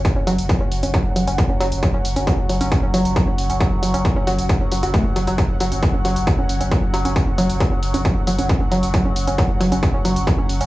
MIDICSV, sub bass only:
0, 0, Header, 1, 2, 480
1, 0, Start_track
1, 0, Tempo, 444444
1, 53, Time_signature, 4, 2, 24, 8
1, 11513, End_track
2, 0, Start_track
2, 0, Title_t, "Sub bass"
2, 0, Program_c, 0, 38
2, 176, Note_on_c, 0, 30, 76
2, 287, Note_off_c, 0, 30, 0
2, 293, Note_on_c, 0, 30, 104
2, 409, Note_off_c, 0, 30, 0
2, 416, Note_on_c, 0, 30, 83
2, 531, Note_off_c, 0, 30, 0
2, 656, Note_on_c, 0, 30, 73
2, 766, Note_off_c, 0, 30, 0
2, 773, Note_on_c, 0, 30, 97
2, 889, Note_off_c, 0, 30, 0
2, 896, Note_on_c, 0, 30, 77
2, 1011, Note_off_c, 0, 30, 0
2, 1136, Note_on_c, 0, 30, 81
2, 1247, Note_off_c, 0, 30, 0
2, 1253, Note_on_c, 0, 30, 95
2, 1370, Note_off_c, 0, 30, 0
2, 1376, Note_on_c, 0, 30, 87
2, 1491, Note_off_c, 0, 30, 0
2, 1616, Note_on_c, 0, 30, 75
2, 1727, Note_off_c, 0, 30, 0
2, 1733, Note_on_c, 0, 30, 94
2, 1850, Note_off_c, 0, 30, 0
2, 1856, Note_on_c, 0, 30, 85
2, 1971, Note_off_c, 0, 30, 0
2, 2096, Note_on_c, 0, 30, 82
2, 2207, Note_off_c, 0, 30, 0
2, 2213, Note_on_c, 0, 30, 97
2, 2329, Note_off_c, 0, 30, 0
2, 2336, Note_on_c, 0, 30, 82
2, 2451, Note_off_c, 0, 30, 0
2, 2576, Note_on_c, 0, 30, 77
2, 2686, Note_off_c, 0, 30, 0
2, 2693, Note_on_c, 0, 30, 104
2, 2809, Note_off_c, 0, 30, 0
2, 2816, Note_on_c, 0, 30, 77
2, 2931, Note_off_c, 0, 30, 0
2, 3056, Note_on_c, 0, 30, 79
2, 3167, Note_off_c, 0, 30, 0
2, 3173, Note_on_c, 0, 30, 99
2, 3289, Note_off_c, 0, 30, 0
2, 3296, Note_on_c, 0, 30, 83
2, 3411, Note_off_c, 0, 30, 0
2, 3536, Note_on_c, 0, 30, 74
2, 3647, Note_off_c, 0, 30, 0
2, 3653, Note_on_c, 0, 30, 95
2, 3770, Note_off_c, 0, 30, 0
2, 3777, Note_on_c, 0, 30, 85
2, 3891, Note_off_c, 0, 30, 0
2, 4016, Note_on_c, 0, 30, 78
2, 4127, Note_off_c, 0, 30, 0
2, 4133, Note_on_c, 0, 30, 105
2, 4250, Note_off_c, 0, 30, 0
2, 4256, Note_on_c, 0, 30, 82
2, 4371, Note_off_c, 0, 30, 0
2, 4496, Note_on_c, 0, 30, 79
2, 4607, Note_off_c, 0, 30, 0
2, 4613, Note_on_c, 0, 30, 98
2, 4730, Note_off_c, 0, 30, 0
2, 4736, Note_on_c, 0, 30, 80
2, 4851, Note_off_c, 0, 30, 0
2, 4976, Note_on_c, 0, 30, 78
2, 5087, Note_off_c, 0, 30, 0
2, 5094, Note_on_c, 0, 30, 102
2, 5210, Note_off_c, 0, 30, 0
2, 5217, Note_on_c, 0, 30, 85
2, 5331, Note_off_c, 0, 30, 0
2, 5456, Note_on_c, 0, 30, 74
2, 5567, Note_off_c, 0, 30, 0
2, 5573, Note_on_c, 0, 30, 97
2, 5690, Note_off_c, 0, 30, 0
2, 5696, Note_on_c, 0, 30, 80
2, 5811, Note_off_c, 0, 30, 0
2, 5937, Note_on_c, 0, 30, 76
2, 6047, Note_off_c, 0, 30, 0
2, 6054, Note_on_c, 0, 30, 103
2, 6170, Note_off_c, 0, 30, 0
2, 6176, Note_on_c, 0, 30, 85
2, 6291, Note_off_c, 0, 30, 0
2, 6416, Note_on_c, 0, 30, 76
2, 6527, Note_off_c, 0, 30, 0
2, 6533, Note_on_c, 0, 30, 94
2, 6649, Note_off_c, 0, 30, 0
2, 6656, Note_on_c, 0, 30, 81
2, 6771, Note_off_c, 0, 30, 0
2, 6896, Note_on_c, 0, 30, 78
2, 7006, Note_off_c, 0, 30, 0
2, 7013, Note_on_c, 0, 30, 99
2, 7129, Note_off_c, 0, 30, 0
2, 7135, Note_on_c, 0, 30, 80
2, 7251, Note_off_c, 0, 30, 0
2, 7376, Note_on_c, 0, 30, 76
2, 7486, Note_off_c, 0, 30, 0
2, 7493, Note_on_c, 0, 30, 98
2, 7609, Note_off_c, 0, 30, 0
2, 7616, Note_on_c, 0, 30, 87
2, 7731, Note_off_c, 0, 30, 0
2, 7855, Note_on_c, 0, 30, 80
2, 7966, Note_off_c, 0, 30, 0
2, 7973, Note_on_c, 0, 30, 101
2, 8089, Note_off_c, 0, 30, 0
2, 8095, Note_on_c, 0, 30, 85
2, 8210, Note_off_c, 0, 30, 0
2, 8336, Note_on_c, 0, 30, 74
2, 8446, Note_off_c, 0, 30, 0
2, 8453, Note_on_c, 0, 30, 104
2, 8569, Note_off_c, 0, 30, 0
2, 8576, Note_on_c, 0, 30, 79
2, 8691, Note_off_c, 0, 30, 0
2, 8816, Note_on_c, 0, 30, 76
2, 8926, Note_off_c, 0, 30, 0
2, 8933, Note_on_c, 0, 30, 97
2, 9049, Note_off_c, 0, 30, 0
2, 9056, Note_on_c, 0, 30, 81
2, 9171, Note_off_c, 0, 30, 0
2, 9296, Note_on_c, 0, 30, 77
2, 9407, Note_off_c, 0, 30, 0
2, 9413, Note_on_c, 0, 30, 97
2, 9529, Note_off_c, 0, 30, 0
2, 9536, Note_on_c, 0, 30, 87
2, 9651, Note_off_c, 0, 30, 0
2, 9776, Note_on_c, 0, 30, 77
2, 9887, Note_off_c, 0, 30, 0
2, 9893, Note_on_c, 0, 30, 101
2, 10009, Note_off_c, 0, 30, 0
2, 10016, Note_on_c, 0, 30, 86
2, 10131, Note_off_c, 0, 30, 0
2, 10256, Note_on_c, 0, 30, 75
2, 10367, Note_off_c, 0, 30, 0
2, 10373, Note_on_c, 0, 30, 100
2, 10490, Note_off_c, 0, 30, 0
2, 10496, Note_on_c, 0, 30, 80
2, 10611, Note_off_c, 0, 30, 0
2, 10736, Note_on_c, 0, 30, 77
2, 10847, Note_off_c, 0, 30, 0
2, 10853, Note_on_c, 0, 30, 100
2, 10970, Note_off_c, 0, 30, 0
2, 10976, Note_on_c, 0, 30, 81
2, 11091, Note_off_c, 0, 30, 0
2, 11216, Note_on_c, 0, 30, 73
2, 11327, Note_off_c, 0, 30, 0
2, 11333, Note_on_c, 0, 30, 99
2, 11450, Note_off_c, 0, 30, 0
2, 11456, Note_on_c, 0, 30, 81
2, 11513, Note_off_c, 0, 30, 0
2, 11513, End_track
0, 0, End_of_file